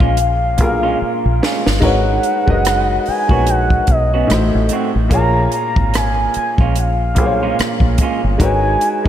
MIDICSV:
0, 0, Header, 1, 7, 480
1, 0, Start_track
1, 0, Tempo, 821918
1, 1065, Time_signature, 4, 2, 24, 8
1, 5305, End_track
2, 0, Start_track
2, 0, Title_t, "Soft synth lead"
2, 0, Program_c, 0, 80
2, 0, Note_on_c, 0, 77, 91
2, 113, Note_off_c, 0, 77, 0
2, 120, Note_on_c, 0, 77, 93
2, 809, Note_off_c, 0, 77, 0
2, 1076, Note_on_c, 0, 78, 100
2, 1798, Note_on_c, 0, 80, 100
2, 1807, Note_off_c, 0, 78, 0
2, 2041, Note_on_c, 0, 78, 100
2, 2050, Note_off_c, 0, 80, 0
2, 2280, Note_on_c, 0, 75, 84
2, 2288, Note_off_c, 0, 78, 0
2, 2752, Note_off_c, 0, 75, 0
2, 2994, Note_on_c, 0, 82, 117
2, 3213, Note_off_c, 0, 82, 0
2, 3233, Note_on_c, 0, 82, 93
2, 3472, Note_on_c, 0, 80, 95
2, 3481, Note_off_c, 0, 82, 0
2, 3709, Note_off_c, 0, 80, 0
2, 3717, Note_on_c, 0, 80, 84
2, 3799, Note_off_c, 0, 80, 0
2, 3958, Note_on_c, 0, 77, 86
2, 4648, Note_off_c, 0, 77, 0
2, 4918, Note_on_c, 0, 80, 114
2, 5305, Note_off_c, 0, 80, 0
2, 5305, End_track
3, 0, Start_track
3, 0, Title_t, "Upright piano"
3, 0, Program_c, 1, 0
3, 0, Control_c, 1, 64, 127
3, 0, Note_on_c, 1, 46, 78
3, 0, Note_on_c, 1, 58, 75
3, 0, Note_on_c, 1, 65, 76
3, 0, Note_on_c, 1, 68, 72
3, 0, Note_on_c, 1, 73, 88
3, 335, Note_off_c, 1, 46, 0
3, 335, Note_on_c, 1, 46, 65
3, 341, Note_off_c, 1, 58, 0
3, 341, Note_on_c, 1, 58, 62
3, 349, Note_off_c, 1, 65, 0
3, 349, Note_on_c, 1, 65, 61
3, 355, Note_off_c, 1, 68, 0
3, 355, Note_on_c, 1, 68, 59
3, 361, Note_on_c, 1, 70, 70
3, 982, Note_off_c, 1, 46, 0
3, 985, Note_off_c, 1, 58, 0
3, 989, Note_off_c, 1, 65, 0
3, 991, Note_off_c, 1, 68, 0
3, 995, Note_off_c, 1, 70, 0
3, 1050, Note_on_c, 1, 56, 81
3, 1055, Note_on_c, 1, 63, 75
3, 1062, Note_on_c, 1, 66, 72
3, 1065, Note_on_c, 1, 70, 76
3, 1071, Note_on_c, 1, 71, 78
3, 1074, Control_c, 1, 64, 0
3, 1076, Note_off_c, 1, 73, 0
3, 1078, Note_on_c, 1, 73, 98
3, 1162, Control_c, 1, 64, 127
3, 1383, Note_off_c, 1, 56, 0
3, 1385, Note_off_c, 1, 63, 0
3, 1389, Note_off_c, 1, 66, 0
3, 1390, Note_off_c, 1, 70, 0
3, 1393, Note_off_c, 1, 71, 0
3, 1396, Note_off_c, 1, 73, 0
3, 1434, Note_on_c, 1, 56, 64
3, 1441, Note_on_c, 1, 63, 66
3, 1447, Note_on_c, 1, 66, 64
3, 1450, Note_on_c, 1, 70, 61
3, 1456, Note_on_c, 1, 71, 68
3, 1460, Note_on_c, 1, 75, 82
3, 1847, Note_off_c, 1, 56, 0
3, 1851, Note_off_c, 1, 63, 0
3, 1854, Note_off_c, 1, 66, 0
3, 1856, Note_off_c, 1, 70, 0
3, 1858, Note_off_c, 1, 71, 0
3, 1861, Note_off_c, 1, 75, 0
3, 1911, Note_on_c, 1, 56, 58
3, 1916, Note_on_c, 1, 63, 53
3, 1922, Note_on_c, 1, 66, 52
3, 1924, Note_on_c, 1, 70, 51
3, 1930, Note_on_c, 1, 71, 54
3, 1937, Note_on_c, 1, 73, 66
3, 2493, Note_on_c, 1, 45, 64
3, 2497, Note_off_c, 1, 63, 0
3, 2499, Note_off_c, 1, 56, 0
3, 2501, Note_on_c, 1, 57, 61
3, 2503, Note_off_c, 1, 66, 0
3, 2505, Note_off_c, 1, 70, 0
3, 2506, Note_on_c, 1, 63, 55
3, 2508, Note_off_c, 1, 71, 0
3, 2512, Note_off_c, 1, 73, 0
3, 2512, Note_on_c, 1, 66, 58
3, 2513, Control_c, 1, 64, 0
3, 2519, Note_on_c, 1, 72, 70
3, 2607, Control_c, 1, 64, 127
3, 2927, Note_off_c, 1, 45, 0
3, 2930, Note_off_c, 1, 57, 0
3, 2933, Note_off_c, 1, 63, 0
3, 2936, Note_off_c, 1, 66, 0
3, 2940, Note_off_c, 1, 72, 0
3, 2973, Note_on_c, 1, 46, 76
3, 2979, Note_on_c, 1, 58, 83
3, 2986, Note_on_c, 1, 65, 82
3, 2991, Note_on_c, 1, 68, 73
3, 2992, Control_c, 1, 64, 0
3, 2999, Note_on_c, 1, 73, 88
3, 3109, Control_c, 1, 64, 127
3, 3833, Note_off_c, 1, 46, 0
3, 3836, Note_off_c, 1, 58, 0
3, 3840, Note_off_c, 1, 65, 0
3, 3842, Note_off_c, 1, 68, 0
3, 3847, Note_off_c, 1, 73, 0
3, 4174, Note_on_c, 1, 46, 73
3, 4180, Note_on_c, 1, 58, 68
3, 4186, Note_on_c, 1, 65, 64
3, 4192, Note_on_c, 1, 68, 59
3, 4199, Note_on_c, 1, 72, 58
3, 4236, Note_off_c, 1, 72, 0
3, 4238, Note_on_c, 1, 73, 74
3, 4821, Note_off_c, 1, 46, 0
3, 4824, Note_off_c, 1, 58, 0
3, 4827, Note_off_c, 1, 65, 0
3, 4830, Note_off_c, 1, 68, 0
3, 4853, Note_off_c, 1, 73, 0
3, 4892, Note_on_c, 1, 56, 77
3, 4899, Note_on_c, 1, 63, 75
3, 4903, Note_on_c, 1, 66, 76
3, 4909, Note_on_c, 1, 70, 71
3, 4913, Control_c, 1, 64, 0
3, 4915, Note_on_c, 1, 71, 75
3, 4920, Note_on_c, 1, 73, 94
3, 5004, Control_c, 1, 64, 127
3, 5224, Note_off_c, 1, 56, 0
3, 5227, Note_off_c, 1, 63, 0
3, 5229, Note_off_c, 1, 66, 0
3, 5232, Note_off_c, 1, 70, 0
3, 5235, Note_off_c, 1, 71, 0
3, 5237, Note_off_c, 1, 73, 0
3, 5274, Note_on_c, 1, 56, 74
3, 5280, Note_on_c, 1, 63, 63
3, 5285, Note_on_c, 1, 66, 68
3, 5305, Note_off_c, 1, 56, 0
3, 5305, Note_off_c, 1, 63, 0
3, 5305, Note_off_c, 1, 66, 0
3, 5305, End_track
4, 0, Start_track
4, 0, Title_t, "Clean electric guitar"
4, 0, Program_c, 2, 27
4, 6, Note_on_c, 2, 65, 52
4, 12, Note_on_c, 2, 61, 46
4, 18, Note_on_c, 2, 56, 45
4, 89, Note_off_c, 2, 65, 0
4, 91, Note_off_c, 2, 61, 0
4, 94, Note_off_c, 2, 56, 0
4, 485, Note_on_c, 2, 65, 58
4, 492, Note_on_c, 2, 61, 46
4, 496, Note_on_c, 2, 56, 45
4, 568, Note_off_c, 2, 65, 0
4, 571, Note_off_c, 2, 61, 0
4, 573, Note_off_c, 2, 56, 0
4, 834, Note_on_c, 2, 56, 56
4, 841, Note_on_c, 2, 61, 65
4, 841, Note_on_c, 2, 65, 61
4, 944, Note_off_c, 2, 56, 0
4, 947, Note_off_c, 2, 61, 0
4, 947, Note_off_c, 2, 65, 0
4, 1931, Note_on_c, 2, 66, 57
4, 1937, Note_on_c, 2, 61, 50
4, 1941, Note_on_c, 2, 59, 50
4, 2011, Note_off_c, 2, 66, 0
4, 2014, Note_off_c, 2, 61, 0
4, 2016, Note_off_c, 2, 59, 0
4, 2416, Note_on_c, 2, 66, 50
4, 2421, Note_on_c, 2, 61, 42
4, 2425, Note_on_c, 2, 59, 42
4, 2494, Note_off_c, 2, 66, 0
4, 2496, Note_off_c, 2, 61, 0
4, 2498, Note_off_c, 2, 59, 0
4, 2752, Note_on_c, 2, 57, 54
4, 2762, Note_on_c, 2, 60, 53
4, 2763, Note_on_c, 2, 66, 52
4, 2863, Note_off_c, 2, 57, 0
4, 2867, Note_off_c, 2, 60, 0
4, 2868, Note_off_c, 2, 66, 0
4, 3858, Note_on_c, 2, 65, 46
4, 3861, Note_on_c, 2, 61, 49
4, 3867, Note_on_c, 2, 56, 45
4, 3934, Note_off_c, 2, 65, 0
4, 3936, Note_off_c, 2, 61, 0
4, 3939, Note_off_c, 2, 56, 0
4, 4338, Note_on_c, 2, 65, 56
4, 4340, Note_on_c, 2, 61, 50
4, 4347, Note_on_c, 2, 56, 43
4, 4414, Note_off_c, 2, 65, 0
4, 4416, Note_off_c, 2, 61, 0
4, 4419, Note_off_c, 2, 56, 0
4, 4680, Note_on_c, 2, 56, 58
4, 4687, Note_on_c, 2, 61, 63
4, 4691, Note_on_c, 2, 65, 65
4, 4787, Note_off_c, 2, 56, 0
4, 4790, Note_off_c, 2, 61, 0
4, 4792, Note_off_c, 2, 65, 0
4, 5305, End_track
5, 0, Start_track
5, 0, Title_t, "Fingered electric bass"
5, 0, Program_c, 3, 33
5, 8, Note_on_c, 3, 34, 66
5, 351, Note_off_c, 3, 34, 0
5, 351, Note_on_c, 3, 35, 79
5, 552, Note_off_c, 3, 35, 0
5, 733, Note_on_c, 3, 34, 72
5, 815, Note_off_c, 3, 34, 0
5, 974, Note_on_c, 3, 31, 74
5, 1055, Note_off_c, 3, 31, 0
5, 1071, Note_on_c, 3, 32, 98
5, 1272, Note_off_c, 3, 32, 0
5, 1453, Note_on_c, 3, 30, 71
5, 1738, Note_off_c, 3, 30, 0
5, 1929, Note_on_c, 3, 34, 68
5, 2216, Note_off_c, 3, 34, 0
5, 2271, Note_on_c, 3, 35, 79
5, 2472, Note_off_c, 3, 35, 0
5, 2515, Note_on_c, 3, 33, 93
5, 2628, Note_off_c, 3, 33, 0
5, 2657, Note_on_c, 3, 33, 73
5, 2737, Note_off_c, 3, 33, 0
5, 2894, Note_on_c, 3, 33, 78
5, 2976, Note_off_c, 3, 33, 0
5, 2991, Note_on_c, 3, 34, 94
5, 3192, Note_off_c, 3, 34, 0
5, 3373, Note_on_c, 3, 32, 74
5, 3658, Note_off_c, 3, 32, 0
5, 3849, Note_on_c, 3, 34, 73
5, 4191, Note_off_c, 3, 34, 0
5, 4191, Note_on_c, 3, 35, 86
5, 4392, Note_off_c, 3, 35, 0
5, 4562, Note_on_c, 3, 34, 77
5, 4648, Note_off_c, 3, 34, 0
5, 4813, Note_on_c, 3, 31, 73
5, 4895, Note_off_c, 3, 31, 0
5, 4912, Note_on_c, 3, 32, 98
5, 5112, Note_off_c, 3, 32, 0
5, 5305, End_track
6, 0, Start_track
6, 0, Title_t, "Muted fingered electric bass strokes"
6, 595, Note_on_c, 9, 29, 41
6, 653, Note_off_c, 9, 29, 0
6, 1800, Note_on_c, 9, 29, 38
6, 1859, Note_off_c, 9, 29, 0
6, 3716, Note_on_c, 9, 29, 38
6, 3775, Note_off_c, 9, 29, 0
6, 4435, Note_on_c, 9, 29, 44
6, 4494, Note_off_c, 9, 29, 0
6, 5305, End_track
7, 0, Start_track
7, 0, Title_t, "Drums"
7, 2, Note_on_c, 9, 36, 83
7, 60, Note_off_c, 9, 36, 0
7, 100, Note_on_c, 9, 42, 71
7, 158, Note_off_c, 9, 42, 0
7, 338, Note_on_c, 9, 42, 59
7, 344, Note_on_c, 9, 36, 79
7, 396, Note_off_c, 9, 42, 0
7, 402, Note_off_c, 9, 36, 0
7, 836, Note_on_c, 9, 38, 73
7, 894, Note_off_c, 9, 38, 0
7, 972, Note_on_c, 9, 38, 72
7, 1031, Note_off_c, 9, 38, 0
7, 1062, Note_on_c, 9, 36, 96
7, 1063, Note_on_c, 9, 55, 71
7, 1121, Note_off_c, 9, 36, 0
7, 1121, Note_off_c, 9, 55, 0
7, 1304, Note_on_c, 9, 42, 53
7, 1363, Note_off_c, 9, 42, 0
7, 1446, Note_on_c, 9, 36, 85
7, 1505, Note_off_c, 9, 36, 0
7, 1547, Note_on_c, 9, 42, 81
7, 1557, Note_on_c, 9, 37, 91
7, 1606, Note_off_c, 9, 42, 0
7, 1616, Note_off_c, 9, 37, 0
7, 1785, Note_on_c, 9, 46, 34
7, 1843, Note_off_c, 9, 46, 0
7, 1923, Note_on_c, 9, 36, 75
7, 1981, Note_off_c, 9, 36, 0
7, 2024, Note_on_c, 9, 42, 75
7, 2082, Note_off_c, 9, 42, 0
7, 2163, Note_on_c, 9, 36, 71
7, 2221, Note_off_c, 9, 36, 0
7, 2261, Note_on_c, 9, 42, 57
7, 2265, Note_on_c, 9, 36, 82
7, 2319, Note_off_c, 9, 42, 0
7, 2323, Note_off_c, 9, 36, 0
7, 2511, Note_on_c, 9, 42, 72
7, 2520, Note_on_c, 9, 37, 92
7, 2570, Note_off_c, 9, 42, 0
7, 2578, Note_off_c, 9, 37, 0
7, 2739, Note_on_c, 9, 42, 65
7, 2797, Note_off_c, 9, 42, 0
7, 2983, Note_on_c, 9, 36, 95
7, 2983, Note_on_c, 9, 42, 83
7, 3041, Note_off_c, 9, 36, 0
7, 3042, Note_off_c, 9, 42, 0
7, 3222, Note_on_c, 9, 42, 51
7, 3280, Note_off_c, 9, 42, 0
7, 3366, Note_on_c, 9, 36, 87
7, 3424, Note_off_c, 9, 36, 0
7, 3467, Note_on_c, 9, 42, 73
7, 3477, Note_on_c, 9, 37, 98
7, 3526, Note_off_c, 9, 42, 0
7, 3536, Note_off_c, 9, 37, 0
7, 3703, Note_on_c, 9, 42, 51
7, 3761, Note_off_c, 9, 42, 0
7, 3844, Note_on_c, 9, 36, 79
7, 3902, Note_off_c, 9, 36, 0
7, 3945, Note_on_c, 9, 42, 67
7, 4004, Note_off_c, 9, 42, 0
7, 4181, Note_on_c, 9, 42, 60
7, 4186, Note_on_c, 9, 36, 82
7, 4240, Note_off_c, 9, 42, 0
7, 4244, Note_off_c, 9, 36, 0
7, 4433, Note_on_c, 9, 42, 66
7, 4442, Note_on_c, 9, 37, 99
7, 4492, Note_off_c, 9, 42, 0
7, 4500, Note_off_c, 9, 37, 0
7, 4557, Note_on_c, 9, 36, 71
7, 4615, Note_off_c, 9, 36, 0
7, 4660, Note_on_c, 9, 42, 67
7, 4664, Note_on_c, 9, 36, 81
7, 4718, Note_off_c, 9, 42, 0
7, 4722, Note_off_c, 9, 36, 0
7, 4904, Note_on_c, 9, 36, 94
7, 4907, Note_on_c, 9, 42, 79
7, 4963, Note_off_c, 9, 36, 0
7, 4965, Note_off_c, 9, 42, 0
7, 5146, Note_on_c, 9, 42, 55
7, 5204, Note_off_c, 9, 42, 0
7, 5305, End_track
0, 0, End_of_file